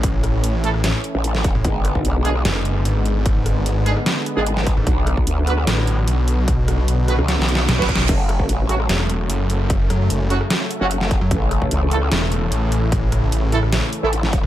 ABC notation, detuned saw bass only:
X:1
M:4/4
L:1/16
Q:1/4=149
K:A
V:1 name="Detuned saw bass" clef=bass
A,,,2 A,,,2 A,,,3 A,,,2 z6 A,,, | z8 F,,,4 G,,,4- | G,,,2 G,,,2 G,,,3 z8 G,,, | z8 A,,,4 B,,,4- |
B,,,2 B,,,2 B,,,3 z4 z B,,, B,,,3 | z8 E,,,4 F,,,4- | F,,,2 F,,2 F,,,3 z8 F,, | z8 E,,,4 A,,,4- |
A,,,2 A,,,2 A,,,3 A,,,2 z6 A,,, |]